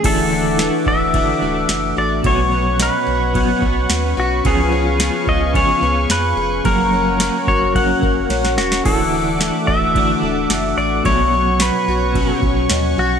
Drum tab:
CC |x---------------|----------------|----------------|----------------|
RD |x---x---x---x---|x---x---x---x---|x---x---x---x---|x---x---x---x---|
TB |----x-------x---|----x-------x---|----x-------x---|----x-----------|
SD |----o-------o---|----o-------o---|----o-------o---|----o-------oooo|
BD |o-----o-o-------|o-------o-o-----|o-----o-o-------|o-----o-o-o-----|

CC |x---------------|----------------|
RD |----x---x---x---|x---x---x---x---|
TB |----x-------x---|----x-------x---|
SD |----o-------o---|----o-------o---|
BD |o-----o-o-------|o-------o-o-----|